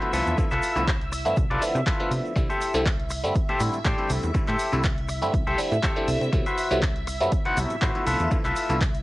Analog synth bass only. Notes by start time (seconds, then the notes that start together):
0.13 C2
0.27 E2
0.51 C2
0.76 C2
1.26 G2
1.37 C2
1.50 C2
1.75 C3
2.11 C3
2.36 C2
2.74 C2
3.24 G2
3.49 A2
3.60 A2
3.85 A2
4.10 C2
4.23 E2
4.48 A2
4.73 C2
5.22 G2
5.34 C2
5.47 C2
5.72 A2
6.08 C2
6.21 C3
6.33 C2
6.71 C2
7.21 F#2
7.46 C2
7.57 C2
7.71 A2
7.82 A2
8.07 C2
8.20 E2
8.45 C2
8.70 C2